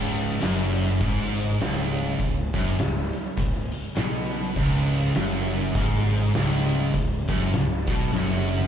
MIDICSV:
0, 0, Header, 1, 5, 480
1, 0, Start_track
1, 0, Tempo, 593472
1, 1775, Time_signature, 4, 2, 24, 8
1, 7014, End_track
2, 0, Start_track
2, 0, Title_t, "String machine"
2, 0, Program_c, 0, 50
2, 0, Note_on_c, 0, 49, 76
2, 0, Note_on_c, 0, 56, 69
2, 0, Note_on_c, 0, 61, 85
2, 7014, Note_off_c, 0, 49, 0
2, 7014, Note_off_c, 0, 56, 0
2, 7014, Note_off_c, 0, 61, 0
2, 7014, End_track
3, 0, Start_track
3, 0, Title_t, "Distorted electric guitar"
3, 0, Program_c, 1, 30
3, 0, Note_on_c, 1, 37, 112
3, 339, Note_off_c, 1, 37, 0
3, 339, Note_on_c, 1, 42, 106
3, 811, Note_off_c, 1, 42, 0
3, 820, Note_on_c, 1, 44, 109
3, 1291, Note_off_c, 1, 44, 0
3, 1301, Note_on_c, 1, 37, 98
3, 1763, Note_off_c, 1, 37, 0
3, 1773, Note_on_c, 1, 37, 80
3, 1997, Note_off_c, 1, 37, 0
3, 2058, Note_on_c, 1, 42, 107
3, 2251, Note_off_c, 1, 42, 0
3, 2257, Note_on_c, 1, 37, 80
3, 2480, Note_off_c, 1, 37, 0
3, 2740, Note_on_c, 1, 37, 74
3, 2961, Note_off_c, 1, 37, 0
3, 3219, Note_on_c, 1, 47, 111
3, 3692, Note_off_c, 1, 47, 0
3, 3700, Note_on_c, 1, 37, 112
3, 4172, Note_off_c, 1, 37, 0
3, 4180, Note_on_c, 1, 42, 111
3, 4648, Note_off_c, 1, 42, 0
3, 4651, Note_on_c, 1, 44, 112
3, 5127, Note_off_c, 1, 44, 0
3, 5136, Note_on_c, 1, 37, 104
3, 5607, Note_off_c, 1, 37, 0
3, 5617, Note_on_c, 1, 37, 78
3, 5839, Note_off_c, 1, 37, 0
3, 5892, Note_on_c, 1, 42, 102
3, 6088, Note_off_c, 1, 42, 0
3, 6100, Note_on_c, 1, 37, 79
3, 6321, Note_off_c, 1, 37, 0
3, 6374, Note_on_c, 1, 47, 101
3, 6564, Note_off_c, 1, 47, 0
3, 6567, Note_on_c, 1, 42, 109
3, 7014, Note_off_c, 1, 42, 0
3, 7014, End_track
4, 0, Start_track
4, 0, Title_t, "Fingered electric bass"
4, 0, Program_c, 2, 33
4, 0, Note_on_c, 2, 25, 103
4, 302, Note_off_c, 2, 25, 0
4, 342, Note_on_c, 2, 30, 91
4, 786, Note_off_c, 2, 30, 0
4, 820, Note_on_c, 2, 32, 94
4, 1265, Note_off_c, 2, 32, 0
4, 1291, Note_on_c, 2, 25, 98
4, 1741, Note_off_c, 2, 25, 0
4, 1777, Note_on_c, 2, 25, 84
4, 2036, Note_off_c, 2, 25, 0
4, 2054, Note_on_c, 2, 30, 93
4, 2241, Note_off_c, 2, 30, 0
4, 2255, Note_on_c, 2, 25, 85
4, 2515, Note_off_c, 2, 25, 0
4, 2730, Note_on_c, 2, 25, 84
4, 2992, Note_off_c, 2, 25, 0
4, 3213, Note_on_c, 2, 35, 94
4, 3662, Note_off_c, 2, 35, 0
4, 3688, Note_on_c, 2, 25, 99
4, 4140, Note_off_c, 2, 25, 0
4, 4171, Note_on_c, 2, 30, 92
4, 4621, Note_off_c, 2, 30, 0
4, 4647, Note_on_c, 2, 32, 94
4, 5099, Note_off_c, 2, 32, 0
4, 5137, Note_on_c, 2, 25, 92
4, 5584, Note_off_c, 2, 25, 0
4, 5615, Note_on_c, 2, 25, 83
4, 5875, Note_off_c, 2, 25, 0
4, 5894, Note_on_c, 2, 30, 92
4, 6081, Note_off_c, 2, 30, 0
4, 6096, Note_on_c, 2, 25, 81
4, 6355, Note_off_c, 2, 25, 0
4, 6367, Note_on_c, 2, 35, 94
4, 6557, Note_off_c, 2, 35, 0
4, 6564, Note_on_c, 2, 30, 97
4, 7014, Note_off_c, 2, 30, 0
4, 7014, End_track
5, 0, Start_track
5, 0, Title_t, "Drums"
5, 134, Note_on_c, 9, 42, 70
5, 215, Note_off_c, 9, 42, 0
5, 334, Note_on_c, 9, 42, 105
5, 344, Note_on_c, 9, 38, 113
5, 415, Note_off_c, 9, 42, 0
5, 424, Note_off_c, 9, 38, 0
5, 612, Note_on_c, 9, 42, 82
5, 693, Note_off_c, 9, 42, 0
5, 713, Note_on_c, 9, 42, 49
5, 794, Note_off_c, 9, 42, 0
5, 816, Note_on_c, 9, 36, 110
5, 817, Note_on_c, 9, 42, 107
5, 897, Note_off_c, 9, 36, 0
5, 898, Note_off_c, 9, 42, 0
5, 964, Note_on_c, 9, 42, 50
5, 1044, Note_off_c, 9, 42, 0
5, 1094, Note_on_c, 9, 42, 79
5, 1175, Note_off_c, 9, 42, 0
5, 1196, Note_on_c, 9, 42, 52
5, 1277, Note_off_c, 9, 42, 0
5, 1299, Note_on_c, 9, 42, 109
5, 1308, Note_on_c, 9, 38, 118
5, 1380, Note_off_c, 9, 42, 0
5, 1389, Note_off_c, 9, 38, 0
5, 1446, Note_on_c, 9, 42, 48
5, 1527, Note_off_c, 9, 42, 0
5, 1583, Note_on_c, 9, 42, 75
5, 1664, Note_off_c, 9, 42, 0
5, 1688, Note_on_c, 9, 42, 49
5, 1768, Note_off_c, 9, 42, 0
5, 1777, Note_on_c, 9, 36, 85
5, 1777, Note_on_c, 9, 42, 101
5, 1857, Note_off_c, 9, 42, 0
5, 1858, Note_off_c, 9, 36, 0
5, 2054, Note_on_c, 9, 36, 102
5, 2057, Note_on_c, 9, 42, 71
5, 2135, Note_off_c, 9, 36, 0
5, 2138, Note_off_c, 9, 42, 0
5, 2153, Note_on_c, 9, 42, 47
5, 2234, Note_off_c, 9, 42, 0
5, 2254, Note_on_c, 9, 42, 104
5, 2264, Note_on_c, 9, 38, 118
5, 2335, Note_off_c, 9, 42, 0
5, 2345, Note_off_c, 9, 38, 0
5, 2395, Note_on_c, 9, 42, 47
5, 2404, Note_on_c, 9, 38, 34
5, 2475, Note_off_c, 9, 42, 0
5, 2485, Note_off_c, 9, 38, 0
5, 2533, Note_on_c, 9, 42, 78
5, 2614, Note_off_c, 9, 42, 0
5, 2725, Note_on_c, 9, 42, 98
5, 2731, Note_on_c, 9, 36, 100
5, 2806, Note_off_c, 9, 42, 0
5, 2811, Note_off_c, 9, 36, 0
5, 2868, Note_on_c, 9, 42, 45
5, 2948, Note_off_c, 9, 42, 0
5, 3008, Note_on_c, 9, 42, 74
5, 3089, Note_off_c, 9, 42, 0
5, 3101, Note_on_c, 9, 42, 47
5, 3182, Note_off_c, 9, 42, 0
5, 3199, Note_on_c, 9, 42, 101
5, 3209, Note_on_c, 9, 38, 122
5, 3280, Note_off_c, 9, 42, 0
5, 3290, Note_off_c, 9, 38, 0
5, 3342, Note_on_c, 9, 42, 45
5, 3423, Note_off_c, 9, 42, 0
5, 3485, Note_on_c, 9, 42, 73
5, 3566, Note_off_c, 9, 42, 0
5, 3688, Note_on_c, 9, 49, 100
5, 3690, Note_on_c, 9, 36, 98
5, 3769, Note_off_c, 9, 49, 0
5, 3771, Note_off_c, 9, 36, 0
5, 3967, Note_on_c, 9, 42, 70
5, 4048, Note_off_c, 9, 42, 0
5, 4164, Note_on_c, 9, 42, 97
5, 4173, Note_on_c, 9, 38, 111
5, 4245, Note_off_c, 9, 42, 0
5, 4254, Note_off_c, 9, 38, 0
5, 4318, Note_on_c, 9, 38, 32
5, 4399, Note_off_c, 9, 38, 0
5, 4448, Note_on_c, 9, 42, 76
5, 4528, Note_off_c, 9, 42, 0
5, 4546, Note_on_c, 9, 42, 46
5, 4627, Note_off_c, 9, 42, 0
5, 4650, Note_on_c, 9, 42, 111
5, 4652, Note_on_c, 9, 36, 117
5, 4731, Note_off_c, 9, 42, 0
5, 4733, Note_off_c, 9, 36, 0
5, 4783, Note_on_c, 9, 42, 47
5, 4793, Note_on_c, 9, 38, 35
5, 4864, Note_off_c, 9, 42, 0
5, 4874, Note_off_c, 9, 38, 0
5, 4928, Note_on_c, 9, 42, 82
5, 5009, Note_off_c, 9, 42, 0
5, 5029, Note_on_c, 9, 42, 51
5, 5110, Note_off_c, 9, 42, 0
5, 5127, Note_on_c, 9, 42, 111
5, 5137, Note_on_c, 9, 38, 118
5, 5208, Note_off_c, 9, 42, 0
5, 5217, Note_off_c, 9, 38, 0
5, 5270, Note_on_c, 9, 42, 49
5, 5351, Note_off_c, 9, 42, 0
5, 5411, Note_on_c, 9, 42, 77
5, 5492, Note_off_c, 9, 42, 0
5, 5508, Note_on_c, 9, 42, 51
5, 5589, Note_off_c, 9, 42, 0
5, 5609, Note_on_c, 9, 42, 107
5, 5613, Note_on_c, 9, 36, 91
5, 5690, Note_off_c, 9, 42, 0
5, 5694, Note_off_c, 9, 36, 0
5, 5890, Note_on_c, 9, 42, 74
5, 5893, Note_on_c, 9, 36, 100
5, 5971, Note_off_c, 9, 42, 0
5, 5974, Note_off_c, 9, 36, 0
5, 5995, Note_on_c, 9, 42, 46
5, 6076, Note_off_c, 9, 42, 0
5, 6088, Note_on_c, 9, 42, 105
5, 6097, Note_on_c, 9, 38, 115
5, 6168, Note_off_c, 9, 42, 0
5, 6178, Note_off_c, 9, 38, 0
5, 6232, Note_on_c, 9, 42, 50
5, 6313, Note_off_c, 9, 42, 0
5, 6364, Note_on_c, 9, 42, 78
5, 6371, Note_on_c, 9, 36, 114
5, 6445, Note_off_c, 9, 42, 0
5, 6452, Note_off_c, 9, 36, 0
5, 6582, Note_on_c, 9, 38, 68
5, 6663, Note_off_c, 9, 38, 0
5, 6723, Note_on_c, 9, 38, 60
5, 6804, Note_off_c, 9, 38, 0
5, 6953, Note_on_c, 9, 48, 72
5, 7014, Note_off_c, 9, 48, 0
5, 7014, End_track
0, 0, End_of_file